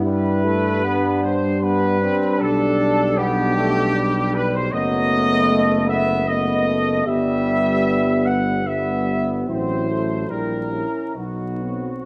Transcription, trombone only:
X:1
M:3/4
L:1/8
Q:1/4=76
K:G
V:1 name="Trombone"
G, A, B, z B, C | D2 B, A, G,2 | F,2 A, B, B, A, | G,3 z B,2 |
C A, G, ^C B,2 |]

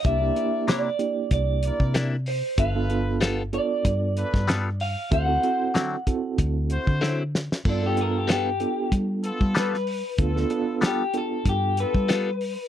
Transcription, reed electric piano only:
X:1
M:4/4
L:1/16
Q:"Swing 16ths" 1/4=95
K:Gmix
V:1 name="Reed electric piano"
[_B,DEG] [B,DEG] [B,DEG]3 z [B,DEG]6- [B,DEG] z3 | [B,DFA] [B,DFA] [B,DFA]3 z [B,DFA]6- [B,DFA] z3 | [CE^FA] [CEFA] [CEFA]3 z [CEFA]6- [CEFA] z3 | [B,DFA] [B,DFA] [B,DFA]3 z [B,DFA]6- [B,DFA] z3 |
[B,DFA] [B,DFA] [B,DFA]3 z [B,DFA]6- [B,DFA] z3 |]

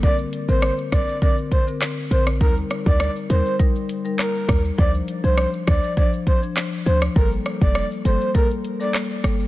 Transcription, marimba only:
X:1
M:4/4
L:1/16
Q:1/4=101
K:Gm
V:1 name="Marimba"
[D,CB] z2 [D,CB] z2 [D,CB] z [D,CB] z2 [D,CB]3 [D,CB]2 | [G,EB]3 [G,EB]3 [G,EB]2 [G,EB]3 [G,EB]3 [G,EB]2 | [F,Dc] z2 [F,Dc] z2 [F,Dc] z [F,Dc] z2 [F,Dc]3 [F,Dc]2 | [G,B,A]3 [G,B,A]3 [G,B,A]2 [G,B,A]3 [G,B,A]3 [G,B,A]2 |]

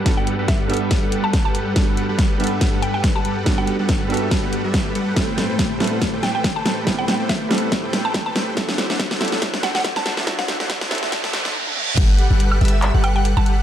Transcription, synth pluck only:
X:1
M:4/4
L:1/16
Q:"Swing 16ths" 1/4=141
K:G
V:1 name="Synth pluck"
z g z2 e3 z4 a z a3- | a3 z6 z g g z a z2 | z g z12 z2 | z8 z2 g g z a z2 |
z g z2 e3 z4 a z a3 | z8 z2 f f z a z2 | z f z12 z2 | z8 z2 g g z a z2 |]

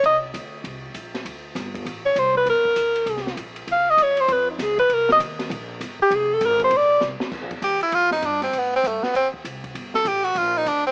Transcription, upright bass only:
X:1
M:4/4
L:1/8
Q:"Swing" 1/4=198
K:Bbmix
V:1 name="Upright bass" clef=bass
C,,2 D,,2 C,,2 B,,,2 | D,,2 G,,,2 =A,,,2 C,,2 | G,,,2 D,,2 C,,2 B,,,2 | _D,,2 E,,2 F,,2 D,,2 |
C,,2 E,,2 B,,,2 G,,, z | F,,,2 A,,,2 B,,,2 C,, z | [K:Bb] (3D,, B,,, G,,, E,, z F,,2 G,,2 | A,,2 G,, z E,,2 C,,2 |
G,,,2 A,,,2 B,,,2 D,,2 |]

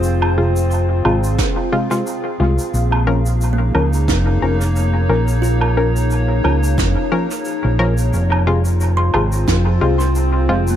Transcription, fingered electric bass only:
X:1
M:4/4
L:1/16
Q:"Swing 16ths" 1/4=89
K:Fm
V:1 name="Fingered electric bass" clef=bass
F,,,6 A,,,2 z6 C,, z | B,,,6 D,,2 F,,,2 F,,,4 B,,,2- | B,,,6 D,,2 F,,, z4 B,,,3 | F,,,6 A,,,2 F,,2 C,,4 F,,,2 |]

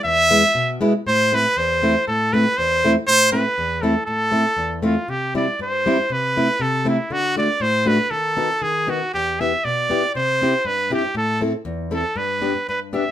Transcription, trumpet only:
X:1
M:2/4
L:1/16
Q:1/4=119
K:Am
V:1 name="Trumpet"
e6 z2 | c2 B2 c4 | A2 B2 c3 z | c2 B4 A2 |
A6 F2 | [K:C] G2 d2 c4 | B4 A2 E2 | ^F2 d2 c2 B2 |
A4 _A2 ^F2 | G2 e2 d4 | c4 B2 G2 | A2 z4 A2 |
B4 B2 e2 |]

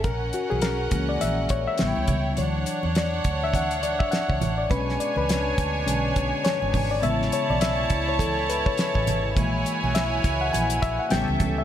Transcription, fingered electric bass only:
X:1
M:4/4
L:1/16
Q:"Swing 16ths" 1/4=103
K:Bdor
V:1 name="Fingered electric bass" clef=bass
^A,,,2 z B,,,3 C,,2 A,,,2 A,,, z =A,,, C,, C,,2 | D,,2 z E,,3 D,,4- D,, z2 C,, A,,,2 | B,,,2 z C,,3 D,,2 B,,,2 B,,, z2 G,,, G,,,2 | A,,,2 z B,,,3 C,,4- C,, z2 A,,, G,,,2 |
^A,,,2 z B,,,3 C,,2 A,,,2 A,,, z =A,,, C,, C,,2 |]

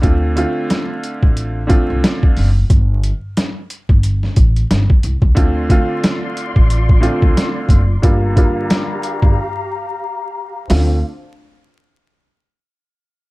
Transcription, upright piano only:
X:1
M:4/4
L:1/8
Q:"Swing 16ths" 1/4=90
K:Dm
V:1 name="Upright piano"
[D,A,CF] [D,A,CF]4 [D,A,CF]2 z | z8 | [D,A,CF] [D,A,CF]4 [D,A,CF]2 z | [D,G,B,F] [D,G,B,F]3 z4 |
[D,A,CF] z6 z |]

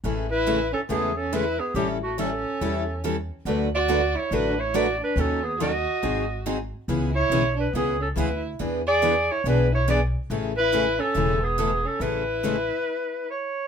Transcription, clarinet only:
X:1
M:4/4
L:1/8
Q:"Swing" 1/4=140
K:A
V:1 name="Clarinet"
z B2 A G A B G | =G F A4 z2 | z d2 c B c d B | A G ^d4 z2 |
z c2 B G A B z | z d2 c B c d z | z B2 A2 G2 A | B6 c2 |]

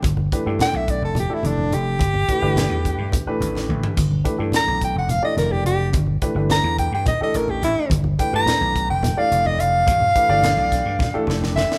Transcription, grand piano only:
X:1
M:7/8
L:1/16
Q:1/4=107
K:Gmix
V:1 name="Grand piano"
z2 [E,A,DGB] [E,A,DGA]4- [E,A,DGA] z [E,A,DGA]4- [E,A,DGA] | z2 [E,A,DGB] [E,A,DGB]4- [E,A,DGB] z [E,A,DGB]4- [E,A,DGB] | z2 [E,A,DGB] [E,A,DGA]4- [E,A,DGA] z [E,A,DGd]4- [E,A,DGd] | z2 [E,A,DGB] [E,A,DGB]4- [E,A,DGB] z [E,A,DGA]4- [E,A,DGA] |
z2 [E,A,DGB] [E,A,DGB]4- [E,A,DGB] z [E,A,DGd]4- [E,A,DGd]- | [E,A,DGd] z [E,A,DGB] [E,A,DGd]4- [E,A,DGd] z [E,A,DGA]4- [E,A,DGA] |]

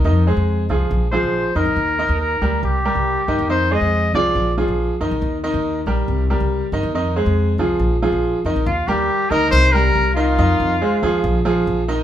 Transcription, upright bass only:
X:1
M:4/4
L:1/16
Q:1/4=139
K:Eb
V:1 name="Upright bass" clef=bass
F,,3 F,,3 C,,2 B,,,3 B,,,2 z F,, B,,, | E,,3 E,,3 D,,2 C,,3 C,,2 z G,, E,, | F,,3 F,,3 C,,2 B,,,3 B,,,2 z F,, B,,, | E,,3 E,,3 B,,,2 C,,3 C,,2 z G,, E,, |
F,,3 F,,3 C,,2 B,,,3 B,,,2 z F,, B,,, | E,,2 E,,2 z2 D,,2 C,,4 C,,4 | F,,2 F,,2 z2 E,,2 B,,,4 B,,,4 |]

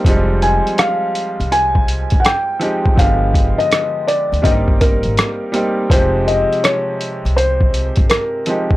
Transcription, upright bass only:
X:1
M:4/4
L:1/16
Q:"Swing 16ths" 1/4=82
K:Fm
V:1 name="Upright bass" clef=bass
F,,,3 z4 C,,4 G,,, z4 | G,,,3 z4 =D,, G,,,3 A,,, z4 | F,,,3 z4 C,,4 G,,, z4 |]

